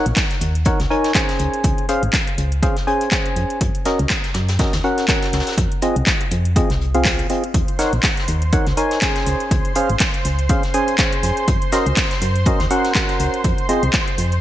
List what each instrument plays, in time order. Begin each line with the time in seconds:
0.06 fm bass A#1, closed hi-hat
0.16 kick, snare, clap, closed hi-hat
0.31 snare, closed hi-hat
0.41 fm bass D#2, closed hi-hat
0.55 closed hi-hat
0.65 synth stab D#4 A#4 C#5 F#5, kick, closed hi-hat
0.80 fm bass C#2, snare, closed hi-hat
0.90 synth stab D#4 A#4 C#5 G#5, closed hi-hat
1.04 snare, closed hi-hat
1.15 synth stab C#4 G#4 C5 G#5, kick, snare, clap, closed hi-hat
1.29 snare, closed hi-hat
1.39 fm bass C#2, closed hi-hat
1.54 closed hi-hat
1.64 fm bass C#2, kick, closed hi-hat
1.78 closed hi-hat
1.89 synth stab C#4 G#4 C5 F5, closed hi-hat
2.03 fm bass G#1, closed hi-hat
2.13 kick, snare, clap, closed hi-hat
2.27 closed hi-hat
2.38 fm bass C#2, closed hi-hat
2.52 closed hi-hat
2.63 synth stab C#4 G#4 C5 F5, kick, closed hi-hat
2.76 snare, closed hi-hat
2.87 synth stab C#4 G#4 C5 G#5, closed hi-hat
3.01 closed hi-hat
3.11 synth stab C#4 G#4 C5 G#5, kick, snare, clap, closed hi-hat
3.26 closed hi-hat
3.36 fm bass F2, closed hi-hat
3.50 closed hi-hat
3.61 fm bass F#2, kick, closed hi-hat
3.75 closed hi-hat
3.85 synth stab C#4 F#4 A#4 D#5, snare, closed hi-hat
3.99 fm bass C#2, closed hi-hat
4.10 kick, snare, clap, closed hi-hat
4.24 snare, closed hi-hat
4.34 fm bass F#2, snare, closed hi-hat
4.49 snare, closed hi-hat
4.59 synth stab C#4 F#4 A#4 D#5, kick, snare, closed hi-hat
4.73 fm bass D#2, snare, closed hi-hat
4.84 synth stab C#4 F#4 A#4 F#5, closed hi-hat
4.98 snare, closed hi-hat
5.08 synth stab C#4 F#4 A#4 F#5, kick, snare, clap, closed hi-hat
5.22 snare, closed hi-hat
5.33 fm bass C#2, snare, closed hi-hat
5.40 snare, closed hi-hat
5.46 snare, closed hi-hat
5.52 snare, closed hi-hat
5.58 fm bass F2, kick, closed hi-hat
5.72 closed hi-hat
5.82 synth stab C4 F4 G#4 D#5, closed hi-hat
5.96 fm bass C2, closed hi-hat
6.07 kick, snare, clap, closed hi-hat
6.21 closed hi-hat
6.31 fm bass F2, closed hi-hat
6.45 closed hi-hat
6.56 synth stab C4 F4 G#4 D#5, kick, closed hi-hat
6.70 fm bass C2, snare, closed hi-hat
6.81 closed hi-hat
6.95 synth stab C4 F4 G#4 F5, closed hi-hat
7.05 kick, snare, clap, closed hi-hat
7.19 closed hi-hat
7.30 synth stab C4 F4 G#4 D#5, closed hi-hat
7.44 closed hi-hat
7.54 fm bass D#2, analog synth pad C5 C6, kick, closed hi-hat
7.68 closed hi-hat
7.79 synth stab D#4 A#4 C#5 F#5, snare, closed hi-hat, open hi-hat
7.93 fm bass A#1, closed hi-hat
8.03 kick, snare, clap, closed hi-hat
8.17 snare, closed hi-hat
8.28 fm bass D#2, closed hi-hat, open hi-hat
8.42 closed hi-hat
8.53 synth stab D#4 A#4 C#5 F#5, kick, closed hi-hat
8.67 fm bass C#2, snare, closed hi-hat
8.77 synth stab D#4 A#4 C#5 G#5, closed hi-hat, open hi-hat
8.91 snare, closed hi-hat
9.02 synth stab C#4 G#4 C5 G#5, kick, snare, clap, closed hi-hat
9.16 snare, closed hi-hat
9.26 fm bass C#2, closed hi-hat, open hi-hat
9.40 closed hi-hat
9.51 fm bass C#2, kick, closed hi-hat
9.65 closed hi-hat
9.75 synth stab C#4 G#4 C5 F5, closed hi-hat, open hi-hat
9.89 fm bass G#1, closed hi-hat
10.00 kick, snare, clap, closed hi-hat
10.14 closed hi-hat
10.25 fm bass C#2, closed hi-hat, open hi-hat
10.39 closed hi-hat
10.49 synth stab C#4 G#4 C5 F5, kick, closed hi-hat
10.63 snare, closed hi-hat
10.74 synth stab C#4 G#4 C5 G#5, closed hi-hat, open hi-hat
10.88 closed hi-hat
10.98 synth stab C#4 G#4 C5 G#5, kick, snare, clap, closed hi-hat
11.13 closed hi-hat
11.23 fm bass F2, closed hi-hat, open hi-hat
11.37 closed hi-hat
11.48 fm bass F#2, kick, closed hi-hat
11.62 closed hi-hat
11.72 synth stab C#4 F#4 A#4 D#5, snare, closed hi-hat, open hi-hat
11.86 fm bass C#2, closed hi-hat
11.97 kick, snare, clap, closed hi-hat
12.10 snare, closed hi-hat
12.21 fm bass F#2, closed hi-hat, open hi-hat
12.36 closed hi-hat
12.45 synth stab C#4 F#4 A#4 D#5, kick, closed hi-hat
12.60 fm bass D#2, snare, closed hi-hat
12.71 synth stab C#4 F#4 A#4 F#5, closed hi-hat, open hi-hat
12.84 snare, closed hi-hat
12.95 synth stab C#4 F#4 F#5, kick, snare, clap, closed hi-hat
13.09 snare, closed hi-hat
13.20 fm bass C#2, closed hi-hat, open hi-hat
13.34 closed hi-hat
13.44 fm bass F2, kick, closed hi-hat
13.58 closed hi-hat
13.69 synth stab C4 F4 G#4 D#5, closed hi-hat, open hi-hat
13.83 fm bass C2, closed hi-hat
13.93 kick, snare, clap, closed hi-hat
14.08 closed hi-hat
14.18 fm bass F2, closed hi-hat, open hi-hat
14.32 closed hi-hat